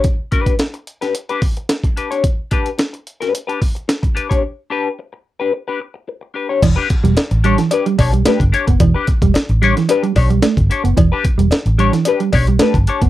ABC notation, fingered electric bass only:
X:1
M:4/4
L:1/16
Q:1/4=110
K:Edor
V:1 name="Fingered electric bass" clef=bass
z16 | z16 | z16 | E,,, z2 E,,, z A,,,2 z3 B,,,2 z G,,, z F,,, |
E,,, z2 E,,, z A,,,2 z3 B,,,2 z G,,, z F,,, | E,,, z2 E,,, z A,,,2 z3 B,,,2 z G,,, z F,,, |]